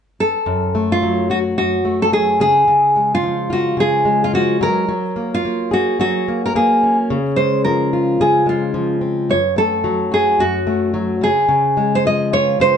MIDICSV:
0, 0, Header, 1, 3, 480
1, 0, Start_track
1, 0, Tempo, 550964
1, 419, Time_signature, 4, 2, 24, 8
1, 11127, End_track
2, 0, Start_track
2, 0, Title_t, "Nylon-string guitar"
2, 0, Program_c, 0, 24
2, 177, Note_on_c, 0, 69, 75
2, 799, Note_off_c, 0, 69, 0
2, 802, Note_on_c, 0, 65, 69
2, 1135, Note_off_c, 0, 65, 0
2, 1139, Note_on_c, 0, 66, 64
2, 1204, Note_off_c, 0, 66, 0
2, 1375, Note_on_c, 0, 66, 68
2, 1758, Note_off_c, 0, 66, 0
2, 1761, Note_on_c, 0, 69, 74
2, 1854, Note_off_c, 0, 69, 0
2, 1857, Note_on_c, 0, 68, 76
2, 2082, Note_off_c, 0, 68, 0
2, 2100, Note_on_c, 0, 68, 77
2, 2737, Note_off_c, 0, 68, 0
2, 2741, Note_on_c, 0, 65, 70
2, 3046, Note_off_c, 0, 65, 0
2, 3071, Note_on_c, 0, 66, 69
2, 3308, Note_off_c, 0, 66, 0
2, 3312, Note_on_c, 0, 68, 82
2, 3691, Note_off_c, 0, 68, 0
2, 3695, Note_on_c, 0, 65, 76
2, 3784, Note_off_c, 0, 65, 0
2, 3788, Note_on_c, 0, 66, 79
2, 4027, Note_off_c, 0, 66, 0
2, 4030, Note_on_c, 0, 70, 82
2, 4616, Note_off_c, 0, 70, 0
2, 4656, Note_on_c, 0, 65, 80
2, 4993, Note_off_c, 0, 65, 0
2, 4996, Note_on_c, 0, 66, 75
2, 5222, Note_off_c, 0, 66, 0
2, 5233, Note_on_c, 0, 66, 80
2, 5585, Note_off_c, 0, 66, 0
2, 5624, Note_on_c, 0, 70, 73
2, 5711, Note_off_c, 0, 70, 0
2, 5714, Note_on_c, 0, 68, 68
2, 6066, Note_off_c, 0, 68, 0
2, 6415, Note_on_c, 0, 72, 78
2, 6641, Note_off_c, 0, 72, 0
2, 6660, Note_on_c, 0, 70, 73
2, 7151, Note_on_c, 0, 68, 77
2, 7155, Note_off_c, 0, 70, 0
2, 7393, Note_off_c, 0, 68, 0
2, 7397, Note_on_c, 0, 65, 55
2, 7835, Note_off_c, 0, 65, 0
2, 8107, Note_on_c, 0, 73, 75
2, 8343, Note_off_c, 0, 73, 0
2, 8346, Note_on_c, 0, 69, 79
2, 8827, Note_off_c, 0, 69, 0
2, 8831, Note_on_c, 0, 68, 75
2, 9062, Note_on_c, 0, 66, 81
2, 9072, Note_off_c, 0, 68, 0
2, 9745, Note_off_c, 0, 66, 0
2, 9788, Note_on_c, 0, 68, 77
2, 10409, Note_off_c, 0, 68, 0
2, 10413, Note_on_c, 0, 72, 84
2, 10506, Note_off_c, 0, 72, 0
2, 10512, Note_on_c, 0, 75, 85
2, 10741, Note_off_c, 0, 75, 0
2, 10745, Note_on_c, 0, 73, 82
2, 10985, Note_off_c, 0, 73, 0
2, 10988, Note_on_c, 0, 72, 86
2, 11127, Note_off_c, 0, 72, 0
2, 11127, End_track
3, 0, Start_track
3, 0, Title_t, "Steel-string acoustic guitar"
3, 0, Program_c, 1, 25
3, 403, Note_on_c, 1, 42, 70
3, 652, Note_on_c, 1, 57, 51
3, 893, Note_on_c, 1, 54, 57
3, 1132, Note_on_c, 1, 66, 50
3, 1365, Note_off_c, 1, 42, 0
3, 1375, Note_on_c, 1, 42, 63
3, 1601, Note_off_c, 1, 57, 0
3, 1611, Note_on_c, 1, 57, 47
3, 1839, Note_off_c, 1, 54, 0
3, 1849, Note_on_c, 1, 54, 52
3, 2091, Note_on_c, 1, 49, 62
3, 2153, Note_off_c, 1, 54, 0
3, 2154, Note_off_c, 1, 57, 0
3, 2155, Note_off_c, 1, 66, 0
3, 2156, Note_off_c, 1, 42, 0
3, 2321, Note_off_c, 1, 49, 0
3, 2332, Note_on_c, 1, 49, 69
3, 2578, Note_on_c, 1, 56, 48
3, 2818, Note_on_c, 1, 53, 56
3, 3049, Note_on_c, 1, 65, 58
3, 3273, Note_off_c, 1, 49, 0
3, 3284, Note_on_c, 1, 49, 60
3, 3526, Note_off_c, 1, 56, 0
3, 3530, Note_on_c, 1, 56, 48
3, 3768, Note_off_c, 1, 53, 0
3, 3778, Note_on_c, 1, 53, 56
3, 4012, Note_off_c, 1, 53, 0
3, 4015, Note_on_c, 1, 54, 64
3, 4071, Note_off_c, 1, 49, 0
3, 4074, Note_off_c, 1, 65, 0
3, 4246, Note_off_c, 1, 54, 0
3, 4256, Note_on_c, 1, 54, 74
3, 4282, Note_off_c, 1, 56, 0
3, 4496, Note_on_c, 1, 58, 54
3, 4739, Note_off_c, 1, 58, 0
3, 4749, Note_on_c, 1, 58, 57
3, 4977, Note_on_c, 1, 68, 52
3, 5213, Note_off_c, 1, 54, 0
3, 5223, Note_on_c, 1, 54, 67
3, 5463, Note_off_c, 1, 58, 0
3, 5474, Note_on_c, 1, 58, 49
3, 5700, Note_off_c, 1, 58, 0
3, 5710, Note_on_c, 1, 58, 57
3, 5953, Note_on_c, 1, 61, 44
3, 6189, Note_on_c, 1, 49, 69
3, 6240, Note_off_c, 1, 54, 0
3, 6244, Note_off_c, 1, 58, 0
3, 6426, Note_on_c, 1, 56, 47
3, 6664, Note_on_c, 1, 53, 54
3, 6906, Note_off_c, 1, 68, 0
3, 6910, Note_on_c, 1, 65, 55
3, 7139, Note_off_c, 1, 49, 0
3, 7149, Note_on_c, 1, 49, 65
3, 7361, Note_off_c, 1, 56, 0
3, 7371, Note_on_c, 1, 56, 45
3, 7605, Note_off_c, 1, 53, 0
3, 7615, Note_on_c, 1, 53, 58
3, 7848, Note_off_c, 1, 61, 0
3, 7851, Note_on_c, 1, 60, 45
3, 8098, Note_on_c, 1, 42, 71
3, 8153, Note_off_c, 1, 56, 0
3, 8153, Note_off_c, 1, 60, 0
3, 8155, Note_off_c, 1, 53, 0
3, 8162, Note_off_c, 1, 49, 0
3, 8162, Note_off_c, 1, 65, 0
3, 8331, Note_on_c, 1, 57, 49
3, 8574, Note_on_c, 1, 54, 54
3, 8814, Note_on_c, 1, 66, 54
3, 9043, Note_off_c, 1, 42, 0
3, 9054, Note_on_c, 1, 42, 66
3, 9284, Note_off_c, 1, 57, 0
3, 9294, Note_on_c, 1, 57, 52
3, 9519, Note_off_c, 1, 54, 0
3, 9529, Note_on_c, 1, 54, 55
3, 9769, Note_on_c, 1, 49, 62
3, 9831, Note_off_c, 1, 54, 0
3, 9833, Note_off_c, 1, 42, 0
3, 9833, Note_off_c, 1, 66, 0
3, 9834, Note_off_c, 1, 57, 0
3, 9996, Note_off_c, 1, 49, 0
3, 10007, Note_on_c, 1, 49, 69
3, 10255, Note_on_c, 1, 56, 51
3, 10499, Note_on_c, 1, 53, 55
3, 10741, Note_on_c, 1, 65, 54
3, 10966, Note_off_c, 1, 49, 0
3, 10976, Note_on_c, 1, 49, 64
3, 11127, Note_off_c, 1, 49, 0
3, 11127, Note_off_c, 1, 53, 0
3, 11127, Note_off_c, 1, 56, 0
3, 11127, Note_off_c, 1, 65, 0
3, 11127, End_track
0, 0, End_of_file